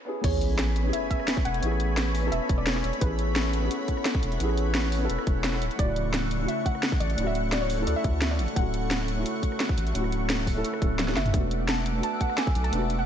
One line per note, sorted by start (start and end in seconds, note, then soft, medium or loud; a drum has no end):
0.05 0.19 B3 medium
0.05 0.20 C#4 medium
0.05 0.21 E4 medium
0.05 0.22 G#4 medium
0.20 0.92 A1 loud
0.20 5.58 A3 medium
0.20 0.80 B3 medium
0.20 0.82 C#4 medium
0.20 0.95 C#5 loud
0.20 5.58 C#5 medium
0.20 2.99 G#5 medium
0.20 5.58 B5 medium
0.20 kick loud
0.20 closed hi-hat loud
0.20 crash loud
0.20 sub drop medium
0.25 0.83 E4 medium
0.25 0.85 G#4 loud
0.41 closed hi-hat medium
0.59 snare loud
0.59 closed hi-hat loud
0.76 closed hi-hat medium
0.82 1.58 B3 medium
0.82 1.60 C#4 medium
0.86 1.61 E4 medium
0.86 1.62 G#4 medium
0.93 1.09 E5 loud
0.93 closed hi-hat loud
1.10 1.46 E5 loud
1.10 kick medium
1.10 closed hi-hat medium
1.20 cross-stick soft
1.28 snare loud
1.28 closed hi-hat loud
1.37 kick loud
1.45 1.61 E1 loud
1.45 2.28 F#5 loud
1.45 closed hi-hat medium
1.54 closed hi-hat soft
1.59 2.31 A1 loud
1.59 2.19 B3 medium
1.59 2.21 C#4 medium
1.59 closed hi-hat medium
1.64 2.22 E4 medium
1.64 2.23 G#4 loud
1.72 cross-stick soft
1.80 closed hi-hat medium
1.97 snare loud
1.97 closed hi-hat medium
2.15 open hi-hat medium
2.20 2.96 B3 loud
2.20 2.99 C#4 medium
2.25 3.00 E4 medium
2.25 3.01 A4 loud
2.32 2.40 E1 medium
2.32 2.59 E5 loud
2.32 closed hi-hat medium
2.49 2.83 E1 medium
2.49 kick loud
2.49 closed hi-hat medium
2.58 2.67 D5 loud
2.66 3.02 C#5 medium
2.66 snare loud
2.66 closed hi-hat medium
2.76 snare soft
2.84 2.92 E1 medium
2.84 closed hi-hat medium
2.93 closed hi-hat soft
2.98 3.70 A1 loud
2.98 3.58 B3 medium
2.98 3.60 C#4 medium
2.98 4.01 B4 medium
2.98 11.30 F#5 medium
2.98 kick loud
2.98 closed hi-hat loud
3.02 3.61 E4 medium
3.02 3.62 G#4 loud
3.19 closed hi-hat medium
3.36 snare loud
3.36 closed hi-hat medium
3.53 closed hi-hat medium
3.59 4.35 B3 medium
3.59 4.38 C#4 medium
3.64 4.39 E4 medium
3.64 4.40 G#4 medium
3.71 closed hi-hat medium
3.88 kick medium
3.88 closed hi-hat medium
3.97 cross-stick soft
4.05 snare loud
4.05 closed hi-hat medium
4.15 kick loud
4.23 4.39 E1 medium
4.23 closed hi-hat medium
4.32 closed hi-hat soft
4.37 5.08 A1 loud
4.37 4.96 B3 medium
4.37 4.98 C#4 medium
4.37 closed hi-hat medium
4.41 5.00 E4 medium
4.41 5.01 G#4 loud
4.49 cross-stick soft
4.57 closed hi-hat medium
4.75 snare loud
4.75 closed hi-hat medium
4.92 open hi-hat medium
4.98 5.59 B3 medium
4.98 5.60 C#4 medium
5.02 5.61 E4 medium
5.02 5.62 A4 loud
5.10 5.18 E1 medium
5.10 closed hi-hat medium
5.19 cross-stick medium
5.27 5.63 E1 medium
5.27 kick loud
5.27 closed hi-hat medium
5.44 snare loud
5.44 closed hi-hat medium
5.53 snare soft
5.61 5.70 D1 medium
5.61 13.06 A3 medium
5.61 11.30 C#6 medium
5.61 closed hi-hat medium
5.71 closed hi-hat soft
5.75 6.47 D1 loud
5.75 6.37 C#3 medium
5.75 6.35 A3 medium
5.75 6.50 D5 loud
5.75 kick loud
5.75 closed hi-hat medium
5.80 6.38 E4 medium
5.80 6.40 F#4 loud
5.96 closed hi-hat medium
6.14 snare loud
6.14 closed hi-hat medium
6.31 closed hi-hat medium
6.37 7.13 A3 medium
6.37 7.15 C#4 medium
6.41 7.16 E4 medium
6.41 7.18 F#4 medium
6.48 6.66 E5 loud
6.48 closed hi-hat medium
6.66 7.01 F#5 loud
6.66 kick medium
6.66 closed hi-hat medium
6.75 cross-stick soft
6.83 snare loud
6.83 closed hi-hat medium
6.92 kick loud
7.00 7.16 A1 loud
7.00 7.28 D5 loud
7.00 closed hi-hat medium
7.10 closed hi-hat soft
7.15 7.86 D1 loud
7.15 7.74 A3 medium
7.15 7.76 C#4 medium
7.15 closed hi-hat loud
7.19 7.77 E4 medium
7.19 7.78 F#4 loud
7.27 7.51 E5 loud
7.27 cross-stick soft
7.35 closed hi-hat medium
7.52 7.61 D5 medium
7.52 snare loud
7.52 closed hi-hat medium
7.62 7.88 C#5 medium
7.70 open hi-hat medium
7.75 8.51 A3 medium
7.75 8.54 C#4 medium
7.80 8.55 E4 medium
7.80 8.56 A4 loud
7.87 7.95 D2 medium
7.87 7.96 D5 medium
7.87 closed hi-hat medium
7.96 8.20 E5 loud
8.04 8.41 D2 medium
8.04 kick loud
8.04 closed hi-hat medium
8.22 8.31 E5 medium
8.22 snare loud
8.22 closed hi-hat medium
8.31 8.55 D5 loud
8.31 snare soft
8.39 8.47 A1 medium
8.39 closed hi-hat medium
8.48 closed hi-hat soft
8.53 9.24 D1 loud
8.53 9.12 A3 medium
8.53 9.14 C#4 medium
8.53 9.56 F#5 loud
8.53 kick loud
8.53 closed hi-hat loud
8.57 9.16 E4 medium
8.57 9.17 F#4 loud
8.74 closed hi-hat medium
8.91 snare loud
8.91 closed hi-hat loud
9.08 closed hi-hat medium
9.14 9.90 A3 medium
9.14 9.92 C#4 medium
9.18 9.94 E4 medium
9.18 9.95 F#4 medium
9.26 closed hi-hat medium
9.43 kick medium
9.43 closed hi-hat medium
9.52 cross-stick soft
9.60 snare loud
9.60 closed hi-hat medium
9.69 kick loud
9.78 9.93 A1 medium
9.78 closed hi-hat medium
9.87 closed hi-hat soft
9.91 10.63 D1 loud
9.91 10.52 A3 medium
9.91 10.53 C#4 medium
9.91 closed hi-hat loud
9.96 10.54 E4 medium
9.96 10.56 F#4 medium
10.04 cross-stick soft
10.12 closed hi-hat medium
10.30 snare loud
10.30 closed hi-hat loud
10.47 kick medium
10.47 open hi-hat medium
10.54 10.78 A3 medium
10.54 10.80 C#4 medium
10.54 10.80 E4 medium
10.54 10.81 A4 loud
10.65 closed hi-hat loud
10.74 cross-stick medium
10.80 11.15 D1 loud
10.80 11.05 A3 medium
10.80 11.06 C#4 medium
10.80 11.06 E4 medium
10.80 11.07 A4 medium
10.80 kick loud
10.80 closed hi-hat medium
10.99 snare loud
10.99 closed hi-hat loud
10.99 high tom medium
11.07 11.29 A3 medium
11.07 11.32 C#4 medium
11.07 11.32 E4 medium
11.07 11.33 A4 medium
11.07 cross-stick soft
11.07 snare medium
11.07 closed hi-hat soft
11.17 11.32 F#1 loud
11.17 11.70 E5 loud
11.17 snare medium
11.17 closed hi-hat medium
11.26 closed hi-hat soft
11.26 mid tom medium
11.30 12.02 E1 loud
11.30 11.90 A3 medium
11.30 11.92 B3 medium
11.30 13.06 E5 medium
11.30 13.06 F#5 medium
11.30 13.06 D6 medium
11.30 kick loud
11.30 closed hi-hat loud
11.35 11.93 D4 medium
11.35 11.94 F#4 loud
11.51 closed hi-hat medium
11.69 12.02 A5 loud
11.69 snare loud
11.69 closed hi-hat loud
11.86 closed hi-hat medium
11.92 12.68 A3 medium
11.92 12.70 B3 medium
11.96 12.71 D4 medium
11.96 12.72 F#4 medium
12.03 12.21 A5 loud
12.03 closed hi-hat loud
12.21 12.39 F#5 loud
12.21 kick medium
12.21 closed hi-hat medium
12.30 cross-stick soft
12.38 12.65 G#5 loud
12.38 snare loud
12.38 closed hi-hat medium
12.47 kick loud
12.55 12.71 B1 loud
12.55 closed hi-hat medium
12.64 12.96 A5 loud
12.64 closed hi-hat soft
12.69 13.06 E1 loud
12.69 13.06 A3 medium
12.69 13.06 B3 medium
12.69 closed hi-hat medium
12.74 13.06 D4 medium
12.74 13.06 F#4 loud
12.82 cross-stick soft
12.90 closed hi-hat medium
12.99 13.06 F#5 loud